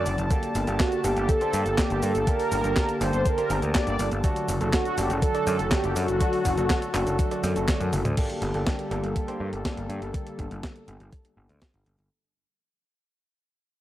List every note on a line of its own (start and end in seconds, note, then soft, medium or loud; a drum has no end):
0.00 0.27 D3 medium
0.00 0.27 F#3 medium
0.00 0.27 F#4 medium
0.00 0.16 D5 loud
0.00 4.20 A5 medium
0.06 0.16 F#1 loud
0.06 open hi-hat loud
0.06 cabasa medium
0.18 0.28 F#1 medium
0.18 closed hi-hat soft
0.18 cabasa soft
0.31 8.13 D3 medium
0.31 0.60 A#3 loud
0.31 4.20 A#3 medium
0.31 0.60 D4 medium
0.31 0.60 G4 medium
0.31 4.20 G4 medium
0.31 0.60 A4 loud
0.31 kick loud
0.31 closed hi-hat medium
0.31 cabasa soft
0.43 closed hi-hat soft
0.43 cabasa soft
0.55 0.65 G1 medium
0.55 open hi-hat loud
0.55 cabasa medium
0.67 0.77 G1 medium
0.67 0.97 A#3 medium
0.67 0.97 D4 medium
0.67 0.97 G4 medium
0.67 0.97 A4 loud
0.67 closed hi-hat soft
0.67 cabasa soft
0.80 1.05 F#4 medium
0.80 kick loud
0.80 snare loud
0.80 clap medium
0.80 closed hi-hat medium
0.80 cabasa soft
0.92 closed hi-hat soft
0.92 cabasa soft
1.04 1.14 G1 medium
1.04 1.38 A#3 loud
1.04 1.38 D4 medium
1.04 1.38 G4 medium
1.04 1.30 G4 medium
1.04 1.38 A4 loud
1.04 open hi-hat loud
1.04 cabasa medium
1.17 1.26 G1 medium
1.17 closed hi-hat soft
1.17 cabasa soft
1.29 1.52 A4 loud
1.29 kick loud
1.29 closed hi-hat medium
1.29 cabasa soft
1.41 1.60 A#3 medium
1.41 1.60 D4 medium
1.41 1.60 G4 medium
1.41 1.60 C5 loud
1.41 closed hi-hat soft
1.41 cabasa soft
1.53 1.63 G2 loud
1.53 1.79 A4 medium
1.53 open hi-hat loud
1.53 cabasa medium
1.66 1.75 G1 medium
1.66 closed hi-hat soft
1.66 cabasa soft
1.78 2.24 A#3 medium
1.78 2.24 D4 medium
1.78 2.01 G4 medium
1.78 2.24 G4 medium
1.78 2.24 A4 medium
1.78 kick loud
1.78 snare loud
1.78 clap medium
1.78 closed hi-hat medium
1.78 cabasa soft
1.90 2.00 G1 medium
1.90 closed hi-hat soft
1.90 cabasa soft
2.03 2.12 G2 loud
2.03 2.26 A4 medium
2.03 open hi-hat loud
2.03 cabasa medium
2.15 2.25 G1 medium
2.15 closed hi-hat soft
2.15 cabasa soft
2.27 2.57 A#3 medium
2.27 2.57 D4 medium
2.27 2.57 G4 medium
2.27 2.57 A4 loud
2.27 2.97 A#4 loud
2.27 kick loud
2.27 closed hi-hat medium
2.27 cabasa soft
2.40 open hi-hat medium
2.40 cabasa soft
2.52 2.61 G1 medium
2.52 open hi-hat loud
2.52 cabasa medium
2.64 2.74 G1 medium
2.64 2.94 A#3 medium
2.64 2.94 D4 medium
2.64 2.94 G4 medium
2.64 2.94 A4 loud
2.64 closed hi-hat soft
2.64 cabasa soft
2.76 kick loud
2.76 snare loud
2.76 clap medium
2.76 closed hi-hat loud
2.76 cabasa soft
2.89 closed hi-hat soft
2.89 cabasa soft
3.01 3.11 G1 medium
3.01 3.35 A#3 loud
3.01 3.35 D4 medium
3.01 3.35 G4 medium
3.01 3.35 A4 loud
3.01 3.26 C5 loud
3.01 open hi-hat loud
3.01 cabasa medium
3.13 3.23 G1 medium
3.13 closed hi-hat soft
3.13 cabasa soft
3.26 3.71 A#4 loud
3.26 kick loud
3.26 closed hi-hat medium
3.26 cabasa soft
3.38 3.56 A#3 medium
3.38 3.56 D4 medium
3.38 3.56 G4 medium
3.38 3.56 C5 loud
3.38 closed hi-hat soft
3.38 cabasa soft
3.50 3.60 G1 loud
3.50 open hi-hat loud
3.50 cabasa medium
3.62 3.72 D2 medium
3.62 closed hi-hat soft
3.62 cabasa soft
3.75 4.21 A#3 medium
3.75 4.21 D4 medium
3.75 4.21 G4 medium
3.75 4.21 A4 medium
3.75 4.09 D5 loud
3.75 kick loud
3.75 snare loud
3.75 clap medium
3.75 closed hi-hat medium
3.75 cabasa soft
3.87 3.97 G1 medium
3.87 closed hi-hat soft
3.87 cabasa soft
3.99 4.09 G1 loud
3.99 open hi-hat loud
3.99 cabasa medium
4.12 4.21 G1 medium
4.12 closed hi-hat soft
4.12 cabasa soft
4.24 8.13 F#3 medium
4.24 4.54 A3 loud
4.24 4.54 D4 medium
4.24 8.13 F#4 medium
4.24 4.54 F#4 medium
4.24 8.13 A4 medium
4.24 4.54 A4 loud
4.24 kick loud
4.24 closed hi-hat loud
4.24 cabasa soft
4.36 closed hi-hat soft
4.36 cabasa soft
4.48 4.58 F#1 medium
4.48 open hi-hat loud
4.48 cabasa medium
4.61 4.70 F#1 medium
4.61 4.91 A3 medium
4.61 4.91 D4 medium
4.61 4.91 F#4 medium
4.61 4.91 A4 loud
4.61 closed hi-hat soft
4.61 cabasa soft
4.73 4.96 F#4 loud
4.73 kick loud
4.73 snare loud
4.73 clap medium
4.73 closed hi-hat loud
4.73 cabasa soft
4.85 closed hi-hat soft
4.85 cabasa soft
4.98 5.07 F#1 loud
4.98 5.32 A3 loud
4.98 5.32 D4 medium
4.98 5.32 F#4 medium
4.98 5.09 G4 loud
4.98 5.32 A4 loud
4.98 open hi-hat loud
4.98 cabasa medium
5.10 5.20 F#1 medium
5.10 closed hi-hat soft
5.10 cabasa soft
5.22 5.45 A4 loud
5.22 kick loud
5.22 closed hi-hat loud
5.22 cabasa soft
5.35 5.53 A3 loud
5.35 5.53 D4 medium
5.35 5.53 F#4 medium
5.35 5.53 D5 loud
5.35 closed hi-hat soft
5.35 cabasa soft
5.47 5.57 F#2 loud
5.47 5.70 A4 loud
5.47 open hi-hat loud
5.47 cabasa medium
5.59 5.69 F#1 medium
5.59 closed hi-hat soft
5.59 cabasa soft
5.71 6.18 A3 medium
5.71 6.18 D4 medium
5.71 6.18 F#4 medium
5.71 5.97 G4 loud
5.71 6.18 A4 medium
5.71 kick loud
5.71 snare loud
5.71 clap medium
5.71 closed hi-hat loud
5.71 cabasa soft
5.84 5.93 F#1 medium
5.84 closed hi-hat soft
5.84 cabasa soft
5.96 6.06 F#2 loud
5.96 7.64 F#4 loud
5.96 open hi-hat loud
5.96 cabasa medium
6.08 6.18 F#1 medium
6.08 closed hi-hat soft
6.08 cabasa soft
6.21 6.50 A3 medium
6.21 6.50 D4 medium
6.21 6.50 F#4 medium
6.21 6.50 A4 loud
6.21 kick loud
6.21 closed hi-hat loud
6.21 cabasa soft
6.33 open hi-hat medium
6.33 cabasa soft
6.45 6.55 F#1 medium
6.45 kick medium
6.45 open hi-hat loud
6.45 cabasa medium
6.57 6.67 F#1 medium
6.57 6.87 A3 medium
6.57 6.87 D4 medium
6.57 6.87 F#4 medium
6.57 6.87 A4 loud
6.57 closed hi-hat soft
6.57 cabasa soft
6.70 kick loud
6.70 snare loud
6.70 clap medium
6.70 closed hi-hat loud
6.70 cabasa soft
6.82 closed hi-hat soft
6.82 cabasa soft
6.94 7.04 F#1 medium
6.94 7.28 A3 loud
6.94 7.28 D4 medium
6.94 7.28 F#4 medium
6.94 7.28 A4 loud
6.94 clap medium
6.94 open hi-hat loud
6.94 cabasa medium
7.07 7.16 F#1 medium
7.07 closed hi-hat soft
7.07 cabasa soft
7.19 kick loud
7.19 closed hi-hat loud
7.19 cabasa soft
7.31 7.50 A3 loud
7.31 7.50 D4 medium
7.31 7.50 F#4 medium
7.31 7.50 D5 loud
7.31 closed hi-hat soft
7.31 cabasa soft
7.44 7.53 F#2 loud
7.44 snare soft
7.44 open hi-hat loud
7.44 cabasa medium
7.56 7.66 F#1 medium
7.56 7.65 A3 medium
7.56 7.65 D4 medium
7.56 7.65 F#4 medium
7.56 7.65 A4 medium
7.56 closed hi-hat soft
7.56 cabasa soft
7.68 7.87 A3 loud
7.68 7.87 D4 medium
7.68 7.87 F#4 medium
7.68 7.87 A4 loud
7.68 kick loud
7.68 snare loud
7.68 clap medium
7.68 closed hi-hat loud
7.68 cabasa soft
7.81 7.90 F#2 medium
7.81 closed hi-hat soft
7.81 high tom medium
7.81 cabasa soft
7.93 8.02 F#1 loud
7.93 open hi-hat loud
7.93 mid tom medium
7.93 cabasa medium
8.05 8.15 D2 medium
8.05 closed hi-hat soft
8.05 mid tom medium
8.05 cabasa soft
8.17 12.07 D3 medium
8.17 12.07 G3 medium
8.17 12.07 A#3 medium
8.17 8.47 A#3 medium
8.17 8.47 D4 medium
8.17 12.07 G4 medium
8.17 8.47 G4 medium
8.17 12.07 A4 medium
8.17 8.47 A4 loud
8.17 kick loud
8.17 closed hi-hat medium
8.17 crash medium
8.30 closed hi-hat soft
8.42 8.52 G1 medium
8.42 closed hi-hat medium
8.54 8.64 G1 medium
8.54 8.84 A#3 medium
8.54 8.84 D4 medium
8.54 8.84 G4 medium
8.54 8.84 A4 medium
8.54 closed hi-hat soft
8.67 kick loud
8.67 snare loud
8.67 closed hi-hat medium
8.79 closed hi-hat soft
8.91 9.01 G1 medium
8.91 9.25 A#3 loud
8.91 9.25 D4 medium
8.91 9.25 G4 medium
8.91 9.25 A4 loud
8.91 closed hi-hat medium
9.03 9.13 G1 medium
9.03 closed hi-hat soft
9.16 kick loud
9.16 closed hi-hat loud
9.28 9.47 A#3 medium
9.28 9.47 D4 medium
9.28 9.47 G4 medium
9.28 9.47 C5 loud
9.28 closed hi-hat soft
9.40 9.50 G2 medium
9.53 9.62 G1 medium
9.53 closed hi-hat soft
9.65 10.11 A#3 medium
9.65 10.11 D4 medium
9.65 10.11 G4 medium
9.65 10.11 A4 medium
9.65 kick loud
9.65 snare loud
9.65 closed hi-hat medium
9.77 9.87 G1 medium
9.77 closed hi-hat soft
9.89 9.99 G2 medium
9.89 closed hi-hat medium
10.02 10.11 G1 medium
10.02 closed hi-hat soft
10.14 kick loud
10.14 closed hi-hat medium
10.27 closed hi-hat soft
10.39 10.48 G1 medium
10.39 kick medium
10.39 closed hi-hat medium
10.51 10.61 G1 medium
10.51 closed hi-hat soft
10.63 kick loud
10.63 snare loud
10.63 closed hi-hat medium
10.76 closed hi-hat soft
10.88 10.98 G1 medium
10.88 closed hi-hat medium
11.00 11.10 G1 medium
11.00 closed hi-hat soft
11.13 kick loud
11.13 closed hi-hat medium
11.25 closed hi-hat soft
11.37 11.47 G1 medium
11.49 11.59 D2 medium
11.49 closed hi-hat soft
11.62 kick loud
11.62 snare loud
11.62 closed hi-hat medium
11.74 11.84 G1 medium
11.74 closed hi-hat soft
11.86 11.96 G1 medium
11.86 closed hi-hat medium
11.99 12.08 G1 medium
11.99 closed hi-hat soft